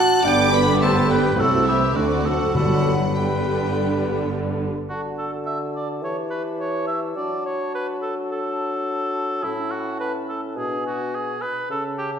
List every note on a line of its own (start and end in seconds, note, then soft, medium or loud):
0.00 0.22 F#4 medium
0.00 0.27 F#5 medium
0.00 0.23 A5 medium
0.00 0.24 F#6 loud
0.23 1.34 G1 medium
0.23 1.34 G2 medium
0.23 1.34 D3 medium
0.23 1.34 B3 medium
0.23 0.51 D4 medium
0.23 1.34 G4 medium
0.23 0.52 D5 medium
0.23 0.53 G5 medium
0.23 1.39 B5 medium
0.23 0.52 D6 loud
0.52 0.64 B3 medium
0.52 0.66 B4 medium
0.52 0.85 D5 medium
0.52 0.81 B5 medium
0.80 0.93 A3 medium
0.80 1.09 A4 medium
0.80 1.10 C5 medium
0.80 1.09 A5 medium
1.10 1.23 G3 medium
1.10 1.38 G4 medium
1.10 1.42 B4 medium
1.10 1.38 G5 medium
1.38 1.95 C2 medium
1.38 1.96 C2 medium
1.38 1.96 C3 medium
1.38 1.51 F#3 medium
1.38 1.94 A3 medium
1.38 1.96 C4 medium
1.38 1.96 E4 medium
1.38 1.66 F#4 medium
1.38 1.70 A4 medium
1.38 1.66 F#5 medium
1.38 1.95 E6 medium
1.66 1.96 E3 medium
1.66 1.97 E4 medium
1.66 1.98 G4 medium
1.66 1.95 E5 medium
1.95 2.53 D2 medium
1.95 2.53 D3 medium
1.95 2.25 D3 medium
1.95 2.53 A3 medium
1.95 2.54 C4 medium
1.95 2.24 D4 medium
1.95 2.27 F#4 medium
1.95 2.55 F#4 medium
1.95 2.25 D5 medium
1.95 2.55 D6 medium
2.24 2.54 F#3 medium
2.24 2.54 F#4 medium
2.24 2.55 A4 medium
2.24 2.53 F#5 medium
2.54 4.64 G1 medium
2.54 4.64 G2 medium
2.54 3.39 G2 medium
2.54 3.11 D3 medium
2.54 3.13 F#3 medium
2.54 3.11 G3 medium
2.54 3.14 B3 medium
2.54 3.14 D4 medium
2.54 2.92 F#4 medium
2.54 2.93 A4 medium
2.54 3.12 F#5 medium
2.54 4.60 B5 medium
3.12 4.65 D3 medium
3.12 4.65 G3 medium
3.12 4.31 G3 medium
3.12 4.66 B3 medium
3.12 4.66 D4 medium
3.12 4.26 G4 medium
3.12 4.27 B4 medium
3.12 4.31 G5 medium
4.88 6.04 D3 soft
4.88 6.04 F#4 soft
4.88 5.02 F#4 soft
4.88 9.39 A5 soft
5.19 5.31 A4 soft
5.46 5.59 E5 medium
5.76 5.88 D5 soft
6.02 7.16 E3 soft
6.02 7.18 G4 soft
6.02 6.17 C#5 soft
6.30 6.43 B4 soft
6.60 6.87 C#5 medium
6.87 7.00 E5 soft
7.17 9.46 F#3 soft
7.17 9.43 D4 soft
7.17 7.45 D5 medium
7.46 7.74 C#5 soft
7.75 7.87 B4 medium
8.02 8.15 A4 soft
8.32 9.45 A4 medium
9.43 10.58 A2 soft
9.43 10.60 C#4 soft
9.43 9.73 E4 medium
9.43 10.58 A5 soft
9.71 9.99 F#4 soft
10.00 10.13 B4 medium
10.29 10.42 A4 soft
10.57 11.42 B2 soft
10.57 11.42 D4 soft
10.57 10.84 G#4 medium
10.57 11.42 G#5 soft
10.86 11.17 F#4 medium
11.15 11.43 G#4 medium
11.42 11.69 B4 medium
11.70 12.19 C#3 medium
11.70 12.19 C#4 medium
11.70 11.83 A4 medium
11.70 12.19 A5 soft
11.98 12.11 G4 medium